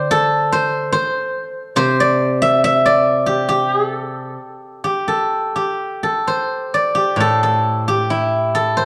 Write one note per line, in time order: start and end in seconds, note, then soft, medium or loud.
0.00 0.94 D3 soft
0.00 0.52 C5 medium
0.00 1.33 D5 medium
0.00 0.35 E5 medium
0.00 0.82 G5 medium
0.11 2.30 A4 medium
0.52 0.92 C5 medium
0.92 1.76 C5 medium
1.76 4.35 C3 medium
1.76 3.75 C5 medium
2.00 2.85 D5 medium
2.42 2.64 E5 medium
2.64 4.36 E5 medium
2.86 4.70 D5 medium
3.26 3.49 G4 medium
3.49 3.73 G4 medium
3.73 3.88 G#4 medium
3.88 5.07 A4 medium
4.84 5.55 G4 medium
5.08 6.03 A4 medium
5.56 6.94 G4 soft
6.03 7.20 A4 soft
6.27 8.26 C5 medium
6.74 8.59 D5 medium
6.95 7.87 G4 medium
7.16 8.85 A2 soft
7.20 7.43 A4 medium
7.43 8.54 A4 medium
7.88 8.85 G4 medium
8.10 8.85 E4 medium
8.55 8.85 A4 medium
8.77 8.85 C5 medium